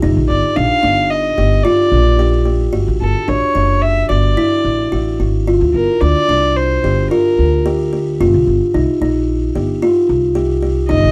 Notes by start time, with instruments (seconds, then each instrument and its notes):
0.02 upright bass G1, kalimba D#4
0.17 upright bass A#1
0.29 upright bass G1, violin D5
0.56 upright bass A#1, kalimba D4, violin F5
0.83 upright bass G1, kalimba D4
1.10 violin D#5
1.38 upright bass G1, kalimba G4
1.63 kalimba F4, violin D5
1.92 upright bass A#1
2.19 kalimba G4
2.45 kalimba G4
2.73 upright bass G1, kalimba F#4
2.88 upright bass A1
3.01 upright bass G1, violin A4
3.28 upright bass A1, kalimba D4, violin C#5
3.55 upright bass F#1, kalimba D4
3.82 violin E5
4.09 upright bass G1, kalimba F#4, violin D5
4.37 kalimba E4
4.65 upright bass A1
4.92 upright bass A1, kalimba F#4
5.20 upright bass G#1, kalimba F#4
5.48 upright bass G1, kalimba F4
5.61 upright bass D2
5.74 upright bass G1, violin A#4
6.01 upright bass D2, kalimba D4, violin D5
6.29 upright bass C2, kalimba D4
6.57 violin C5
6.84 upright bass G1, kalimba G4
7.11 kalimba F4, violin A#4
7.39 upright bass D2
7.66 kalimba G4
7.93 kalimba G4
8.20 upright bass G1, kalimba F4
8.34 upright bass C2
8.47 upright bass G1
8.74 upright bass C2, kalimba D#4
9.01 upright bass A#1, kalimba D#4
9.55 upright bass G1, kalimba G4
9.82 kalimba F4
10.09 upright bass C2
10.35 kalimba G4
10.63 kalimba G4
10.89 upright bass G1, kalimba D#4, violin D#5
11.04 upright bass A#1